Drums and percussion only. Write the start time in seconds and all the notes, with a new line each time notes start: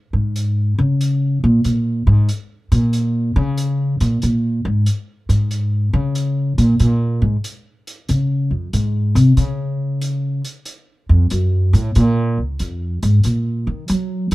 0.36 closed hi-hat
1.01 closed hi-hat
1.64 closed hi-hat
2.29 closed hi-hat
2.72 closed hi-hat
2.93 closed hi-hat
3.58 closed hi-hat
4.00 closed hi-hat
4.22 closed hi-hat
4.86 closed hi-hat
5.30 closed hi-hat
5.51 closed hi-hat
6.15 closed hi-hat
6.58 closed hi-hat
6.80 closed hi-hat
7.44 closed hi-hat
7.87 closed hi-hat
8.09 closed hi-hat
8.73 closed hi-hat
9.16 closed hi-hat
9.37 closed hi-hat
10.02 closed hi-hat
10.45 closed hi-hat
10.65 closed hi-hat
11.30 closed hi-hat
11.74 closed hi-hat
11.95 closed hi-hat
12.59 closed hi-hat
13.03 closed hi-hat
13.24 closed hi-hat
13.88 closed hi-hat
14.31 closed hi-hat